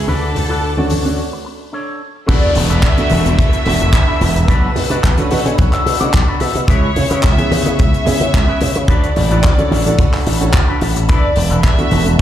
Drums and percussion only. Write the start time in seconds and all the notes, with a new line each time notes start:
0.35 open hi-hat, low conga
0.49 high bongo
0.77 high bongo, high conga
0.90 open hi-hat, high conga
2.29 kick, closed hi-hat, crash
2.55 open hi-hat, low conga
2.71 closed hi-hat
2.83 kick, clap, closed hi-hat
2.98 closed hi-hat, high bongo, high conga
3.10 open hi-hat, high conga
3.26 closed hi-hat
3.39 kick, closed hi-hat
3.53 closed hi-hat
3.66 open hi-hat, low conga
3.80 closed hi-hat, high bongo
3.93 kick, clap, closed hi-hat
4.21 open hi-hat, high bongo, low conga
4.36 closed hi-hat
4.48 kick, closed hi-hat
4.76 open hi-hat, low conga
4.91 closed hi-hat, high bongo
5.04 kick, clap, closed hi-hat
5.17 closed hi-hat, high bongo, high conga
5.31 open hi-hat, high conga
5.46 closed hi-hat
5.58 kick, closed hi-hat, low conga
5.73 clap, closed hi-hat
5.86 open hi-hat
6.01 closed hi-hat
6.14 kick, clap, closed hi-hat
6.40 open hi-hat
6.55 closed hi-hat
6.68 kick, closed hi-hat
6.96 open hi-hat, low conga
7.11 closed hi-hat
7.23 kick, clap, closed hi-hat
7.38 closed hi-hat, high bongo, high conga
7.51 open hi-hat, high conga
7.65 closed hi-hat
7.79 kick, closed hi-hat
7.94 closed hi-hat
8.06 open hi-hat, low conga
8.21 closed hi-hat, high bongo
8.34 kick, clap, closed hi-hat
8.61 open hi-hat, high bongo, low conga
8.75 closed hi-hat
8.88 kick, closed hi-hat
9.04 closed hi-hat
9.16 open hi-hat, low conga
9.31 closed hi-hat, high bongo
9.44 kick, clap, closed hi-hat
9.58 closed hi-hat, high bongo, high conga
9.71 open hi-hat, high conga
9.87 closed hi-hat
9.98 kick, closed hi-hat, low conga
10.13 clap, open hi-hat
10.26 open hi-hat
10.41 closed hi-hat
10.53 kick, clap, closed hi-hat
10.81 open hi-hat
10.96 closed hi-hat
11.09 kick, closed hi-hat
11.36 open hi-hat, low conga
11.51 closed hi-hat
11.64 kick, clap, closed hi-hat
11.78 closed hi-hat, high bongo, high conga
11.91 open hi-hat, high conga
12.06 closed hi-hat